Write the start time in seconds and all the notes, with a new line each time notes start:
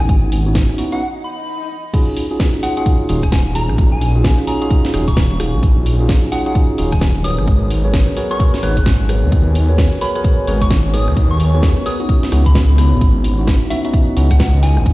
Already playing: E3 B3 C#4 D#4 E4 F#4 D#5 F#5 G#5 D#6
0.00 G#1, cross-stick
0.09 kick, closed hi-hat
0.32 open hi-hat
0.46 B3 C#4 D#4 E4 F#4
0.55 kick, snare, closed hi-hat
0.69 cross-stick
0.78 B3 C#4 D#4 E4 F#4, open hi-hat
0.92 B3 C#4 D#4 E4 F#4 F#5, closed hi-hat
1.01 swell
1.24 B5
1.94 C#4 D#4 F4 F#4 G#4, kick, closed hi-hat, crash
2.09 F5
2.17 open hi-hat
2.28 F#3 C#4 D#4 F4 F#4 G#4
2.40 kick, snare, closed hi-hat
2.63 C#4 D#4 F4 F#4 G#4 F#5, open hi-hat
2.77 C#4 D#4 F4 F#4 G#4 F#5, closed hi-hat
2.86 kick, closed hi-hat
3.09 D#1 C#4 D#4 F4 F#4 G#4, open hi-hat
3.23 G#5, kick, cross-stick, closed hi-hat
3.32 G#5, kick, snare, closed hi-hat
3.46 D#1
3.55 C#4 D#4 F4 F#4 G#4 A#5, open hi-hat
3.63 G#5
3.69 A#1, cross-stick
3.78 kick, closed hi-hat
3.92 G#5
4.01 open hi-hat
4.16 C#4 D#4 F4 F#4 G#4
4.24 kick, snare, closed hi-hat
4.39 cross-stick
4.47 C#4 D#4 F4 F#4 G#4 A#5, open hi-hat
4.62 C#4 D#4 F4 F#4 G#4, closed hi-hat
4.71 kick, closed hi-hat
4.85 snare
4.94 D#1 C#4 D#4 F4 F#4 G#4, cross-stick, open hi-hat
5.08 C#6, kick, closed hi-hat
5.17 kick, snare, closed hi-hat
5.31 D#1
5.40 C#4 D#4 F4 F#4 G#4, cross-stick, open hi-hat
5.54 A#1
5.63 kick, closed hi-hat
5.86 open hi-hat
6.00 C#4 D#4 F4 F#4 G#4
6.09 kick, snare, closed hi-hat
6.32 C#4 D#4 F4 F#4 G#4 F#5, open hi-hat
6.46 C#4 D#4 F4 F#4 G#4 F#5, closed hi-hat
6.55 kick, closed hi-hat
6.78 D#1 C#4 D#4 F4 F#4 G#4, open hi-hat
6.92 G#5, kick, cross-stick, closed hi-hat
7.01 G#5, kick, snare, closed hi-hat
7.16 D#1
7.24 B3 F#4 G#4 A#4 B4 C#5 D#6, open hi-hat
7.38 G#1, cross-stick
7.47 kick, closed hi-hat
7.71 C#5, open hi-hat
7.85 F#4 G#4 A#4 B4 C#5
7.94 kick, snare, closed hi-hat
8.08 cross-stick
8.17 F#4 G#4 A#4 B4 C#5, open hi-hat
8.31 F#4 G#4 A#4 B4 C#5 C#6, closed hi-hat
8.40 kick, closed hi-hat
8.54 snare
8.63 G#1 F#4 G#4 A#4 B4 C#5 F#6, cross-stick, open hi-hat
8.77 G#5, kick, closed hi-hat
8.86 kick, snare, closed hi-hat
9.00 G#1
9.09 F#4 G#4 A#4 B4 C#5, cross-stick, open hi-hat
9.23 D#2
9.32 kick, closed hi-hat
9.55 open hi-hat
9.69 F#4 G#4 A#4 B4 C#5
9.78 kick, snare, closed hi-hat
10.01 F#4 G#4 A#4 B4 C#5 B5, open hi-hat
10.15 F#4 G#4 A#4 B4 C#5 B5, closed hi-hat
10.24 kick, closed hi-hat
10.47 G#1 F#4 G#4 A#4 B4 C#5, open hi-hat
10.61 C#6, kick, cross-stick, closed hi-hat
10.70 kick, snare, closed hi-hat
10.85 G#1
10.93 F#4 G#4 A#4 B4 C#5 D#6, open hi-hat
11.08 D#2, cross-stick
11.17 kick, closed hi-hat
11.31 C#6
11.40 open hi-hat
11.54 F#4 G#4 A#4 B4 C#5
11.63 kick, snare, closed hi-hat
11.77 cross-stick
11.86 F#4 G#4 A#4 B4 C#5 D#6, open hi-hat
12.00 B3 C#4 D#4 E4 F#4, closed hi-hat
12.09 kick, closed hi-hat
12.23 snare
12.32 C#2 B3 C#4 D#4 E4 F#4, cross-stick, open hi-hat
12.46 B5, kick, closed hi-hat
12.55 kick, snare, closed hi-hat
12.62 E3
12.69 C#2
12.78 B3 C#4 D#4 E4 F#4 D#5, cross-stick, open hi-hat
12.92 G#1
13.01 kick, closed hi-hat
13.12 F#5
13.24 open hi-hat
13.38 B3 C#4 D#4 E4 F#4
13.47 kick, snare, closed hi-hat
13.70 B3 C#4 D#4 E4 F#4 E5, open hi-hat
13.85 B3 C#4 D#4 E4 F#4 E5, closed hi-hat
13.94 kick, closed hi-hat
14.17 C#2 B3 C#4 D#4 E4 F#4, open hi-hat
14.31 F#5, kick, cross-stick, closed hi-hat
14.40 F#5, kick, snare, closed hi-hat
14.54 C#2
14.63 B3 C#4 D#4 E4 F#4 G#5, open hi-hat
14.77 G#1, cross-stick
14.86 kick, closed hi-hat